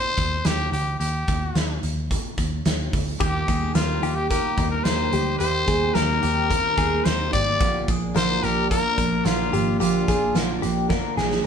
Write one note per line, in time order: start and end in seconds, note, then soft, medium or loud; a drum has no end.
0.00 0.48 C5 loud
0.17 0.40 D#2 medium
0.17 kick medium
0.17 closed hi-hat medium
0.45 0.68 D#2 medium
0.45 0.71 G4 medium
0.45 snare loud
0.45 closed hi-hat medium
0.72 0.95 D2 medium
0.72 0.98 G4 medium
0.72 closed hi-hat medium
0.99 1.23 D#2 loud
0.99 1.78 G4 medium
0.99 closed hi-hat medium
1.28 1.51 D#2 medium
1.28 kick medium
1.28 closed hi-hat medium
1.55 1.78 D#2 medium
1.55 snare medium
1.55 closed hi-hat medium
1.83 2.17 D#2 medium
1.83 closed hi-hat medium
2.11 kick medium
2.11 closed hi-hat medium
2.38 2.60 D#2 medium
2.38 kick medium
2.38 closed hi-hat medium
2.65 2.88 D#2 loud
2.65 snare loud
2.65 closed hi-hat medium
2.93 3.16 D2 medium
2.93 kick medium
2.93 open hi-hat medium
3.19 3.43 D#2 loud
3.19 3.47 D#3 medium
3.19 7.56 D#3 medium
3.19 3.48 G3 medium
3.19 5.38 A#3 medium
3.19 3.47 A#3 medium
3.19 3.45 D#4 medium
3.19 7.56 G4 medium
3.19 3.48 G4 medium
3.19 3.72 G4 medium
3.19 kick loud
3.19 closed hi-hat medium
3.47 3.71 D#2 medium
3.47 3.73 G3 soft
3.47 3.74 A#3 soft
3.47 3.75 D#4 soft
3.47 3.75 G#4 medium
3.47 kick medium
3.47 closed hi-hat medium
3.74 3.98 D#2 loud
3.74 4.02 D#3 medium
3.74 4.02 G3 medium
3.74 4.01 A#3 medium
3.74 4.00 D#4 medium
3.74 4.17 F4 medium
3.74 4.03 A#4 medium
3.74 snare loud
3.74 closed hi-hat medium
4.01 4.37 D#2 medium
4.01 4.29 G3 soft
4.01 4.29 A#3 soft
4.01 4.30 D#4 medium
4.01 4.30 G4 medium
4.01 closed hi-hat medium
4.16 4.29 G4 medium
4.29 4.57 D#3 medium
4.29 4.58 G3 medium
4.29 4.57 A#3 medium
4.29 4.55 D#4 medium
4.29 4.68 G4 medium
4.29 4.57 A#4 medium
4.29 kick medium
4.29 closed hi-hat loud
4.56 4.80 D#2 medium
4.56 4.84 G3 soft
4.56 4.85 A#3 soft
4.56 4.85 D#4 medium
4.56 5.10 A#4 medium
4.56 kick medium
4.56 closed hi-hat medium
4.71 4.85 A#4 medium
4.84 5.08 D#2 medium
4.84 5.12 D#3 medium
4.84 5.12 G3 medium
4.84 5.11 A#3 medium
4.84 5.10 D#4 medium
4.84 5.38 C5 loud
4.84 snare loud
4.84 closed hi-hat medium
5.11 5.36 D2 medium
5.11 5.38 G3 soft
5.11 5.39 A#3 soft
5.11 5.39 D#4 soft
5.11 5.39 G4 medium
5.11 closed hi-hat medium
5.38 5.63 D#2 loud
5.38 5.67 D#3 medium
5.38 5.67 G3 medium
5.38 5.66 A#3 medium
5.38 7.59 C4 medium
5.38 5.65 D#4 medium
5.38 5.67 G4 loud
5.38 5.96 C5 loud
5.38 closed hi-hat medium
5.66 5.91 D#2 medium
5.66 5.93 G3 soft
5.66 5.94 A#3 soft
5.66 5.95 D#4 medium
5.66 5.95 G#4 medium
5.66 kick medium
5.66 closed hi-hat medium
5.94 6.18 D#2 medium
5.94 6.22 D#3 medium
5.94 6.23 G3 medium
5.94 6.22 A#3 medium
5.94 6.21 D#4 medium
5.94 7.06 A#4 loud
5.94 6.22 A#4 medium
5.94 snare medium
5.94 closed hi-hat medium
6.22 6.57 D#2 medium
6.22 6.49 G3 soft
6.22 6.50 A#3 soft
6.22 6.50 D#4 medium
6.22 6.50 G4 medium
6.22 closed hi-hat medium
6.50 6.78 D#3 medium
6.50 6.78 G3 medium
6.50 6.77 A#3 medium
6.50 6.75 D#4 medium
6.50 6.77 A#4 medium
6.50 kick medium
6.50 closed hi-hat medium
6.77 7.00 D#2 medium
6.77 7.04 G3 soft
6.77 7.04 A#3 medium
6.77 7.05 D#4 medium
6.77 7.05 G#4 medium
6.77 kick medium
6.77 closed hi-hat medium
7.04 7.28 D#2 medium
7.04 7.33 D#3 medium
7.04 7.33 G3 medium
7.04 7.31 A#3 medium
7.04 7.30 D#4 medium
7.04 7.33 A#4 medium
7.04 7.32 C5 medium
7.04 snare loud
7.04 closed hi-hat medium
7.31 7.56 G#1 medium
7.31 7.59 G3 soft
7.31 7.59 A#3 medium
7.31 7.60 D#4 medium
7.31 7.59 G4 medium
7.31 7.84 D5 loud
7.31 kick medium
7.31 closed hi-hat medium
7.59 7.83 A#1 loud
7.59 7.87 A#2 medium
7.59 7.88 D3 medium
7.59 7.88 F3 medium
7.59 11.46 F3 medium
7.59 7.87 A#3 medium
7.59 11.46 A#3 medium
7.59 7.85 D4 medium
7.59 11.46 D4 medium
7.59 7.89 G4 medium
7.59 kick loud
7.59 closed hi-hat loud
7.87 8.11 A#1 loud
7.87 8.14 F3 soft
7.87 8.14 A#3 soft
7.87 8.15 D4 soft
7.87 8.15 G#4 medium
7.87 kick medium
7.87 closed hi-hat medium
8.14 8.38 A#1 medium
8.14 8.42 A#2 medium
8.14 8.43 D3 medium
8.14 8.43 F3 medium
8.14 8.42 A#3 medium
8.14 8.41 D4 medium
8.14 8.42 A#4 medium
8.14 8.45 C5 loud
8.14 snare loud
8.14 closed hi-hat medium
8.42 8.77 A#1 medium
8.42 8.69 F3 soft
8.42 8.70 A#3 soft
8.42 8.70 D4 medium
8.42 8.70 G4 medium
8.42 8.70 A#4 loud
8.42 closed hi-hat medium
8.69 8.97 D3 medium
8.69 8.98 F3 medium
8.69 8.97 A#3 medium
8.69 8.96 D4 medium
8.69 9.27 A#4 loud
8.69 8.97 A#4 medium
8.69 kick medium
8.69 closed hi-hat loud
8.97 9.20 A#1 medium
8.97 9.24 F3 soft
8.97 9.25 A#3 soft
8.97 9.25 D4 medium
8.97 9.50 A#4 medium
8.97 kick medium
8.97 closed hi-hat medium
9.24 9.48 A#1 loud
9.24 9.52 A#2 medium
9.24 9.52 D3 medium
9.24 9.53 F3 medium
9.24 9.52 A#3 medium
9.24 9.51 D4 medium
9.24 9.79 F4 medium
9.24 snare loud
9.24 closed hi-hat medium
9.52 9.75 G#1 medium
9.52 9.79 F3 soft
9.52 9.79 A#3 medium
9.52 9.80 D4 medium
9.52 9.79 G4 medium
9.52 closed hi-hat medium
9.79 10.03 A#1 loud
9.79 10.07 A#2 medium
9.79 10.07 D3 medium
9.79 10.08 F3 medium
9.79 10.07 A#3 medium
9.79 10.06 D4 medium
9.79 10.58 F4 medium
9.79 10.08 G4 loud
9.79 closed hi-hat medium
10.07 10.31 A#1 medium
10.07 10.34 F3 soft
10.07 10.35 D4 soft
10.07 10.35 G#4 medium
10.07 kick medium
10.07 closed hi-hat medium
10.34 10.57 A#1 medium
10.34 10.62 A#2 medium
10.34 10.62 D3 medium
10.34 10.63 F3 medium
10.34 10.62 A#3 medium
10.34 10.61 D4 medium
10.34 10.62 A#4 medium
10.34 snare medium
10.34 closed hi-hat medium
10.62 10.97 A#1 medium
10.62 10.89 F3 medium
10.62 10.89 A#3 medium
10.62 10.89 D4 medium
10.62 10.89 G4 medium
10.62 closed hi-hat medium
10.89 11.17 D3 medium
10.89 11.17 F3 medium
10.89 11.16 A#3 medium
10.89 11.15 D4 medium
10.89 11.17 A#4 medium
10.89 kick medium
10.89 snare medium
11.16 11.40 A#1 medium
11.16 11.44 F3 soft
11.16 11.44 A#3 medium
11.16 11.44 D4 medium
11.16 11.44 G#4 medium
11.16 snare medium
11.31 snare medium